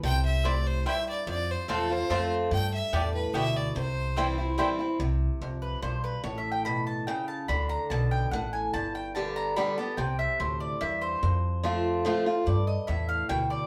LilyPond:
<<
  \new Staff \with { instrumentName = "Mandolin" } { \time 3/4 \key c \major \tempo 4 = 145 r4 <c' e' c'' g''>8 r8 <c' e' c'' g''>8 r8 | r4 <c' f' c'' a''>8 r8 <c' f' c'' a''>8 r8 | r4 <b g' d'' g''>8 r8 <b g' d'' g''>8 r8 | r4 <c' e' c'' g''>8 r8 <c' e' c'' g''>8 r8 |
r4. b'8 c''8 b'8 | \tuplet 3/2 { cis''8 e''8 g''8 } b''8 a''8 g''8 a''8 | b''8 bes''8 a''8 g''8 fis''8 aes''8 | a''8 g''8 a''8 bes''8 b''8 a''8 |
g''8 e''8 c''8 d''8 e''8 c''8~ | c''2 r4 | d''8 ees''8 e''8 f''8 g''8 d''8 | }
  \new Staff \with { instrumentName = "Fiddle" } { \time 3/4 \key c \major g''8 e''8 d''8 c''8 e''8 d''8 | d''8 c''8 a'8 c''4 r8 | g''8 e''8 d''8 b'8 e''8 d''8 | c''2 r4 |
r2. | r2. | r2. | r2. |
r2. | r2. | r2. | }
  \new Staff \with { instrumentName = "Steel-string acoustic guitar" } { \clef bass \time 3/4 \key c \major << { r2. | r4 <f a c' f'>8 <c' f'>8 <f a c' f'>4 | r2. | r4 <e g c' e'>8 <c' e'>8 <e g c' e'>8 <c' e'>8 |
r2. | r2. | r2. | r4 <d g b g'>4 <d g b g'>8 <b g'>8 |
r2. | r4 <f a c' f'>4 <f a c' f'>8 <c' f'>8 | r2. | } \\ { c4 a,4 g,4 | f,2 r4 | g,4 a,4 b,4 | c2 r4 |
c4 f,4 g,4 | a,4 b,4 cis4 | d4 b,4 a,4 | g,2 r4 |
c4 a,4 g,4 | f,2 r4 | g,4 a,4 b,4 | } >> }
  \new Staff \with { instrumentName = "Upright bass" } { \clef bass \time 3/4 \key c \major c,2. | f,4 e,4 f,4 | g,4 e,4 d,4 | c,2. |
c,4 c,4 b,,4 | a,,2. | d,4 b,,4 a,,4 | g,,2. |
c,4 d,4 e,4 | f,2. | g,4 e,4 d,4 | }
>>